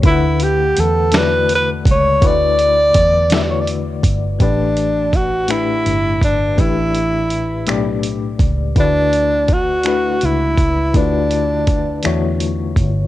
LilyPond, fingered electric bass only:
\new Staff \with { instrumentName = "Fingered electric bass" } { \clef bass \time 6/8 \key d \major \tempo 4. = 55 d,4 e,4. cis,8 | d,4 e,4. g,,8 | a,,2 g,,8 g,,8 | a,,4. b,,4 cis,8 |
d,2 cis,8 cis,8 | d,4. e,4 g,,8 | }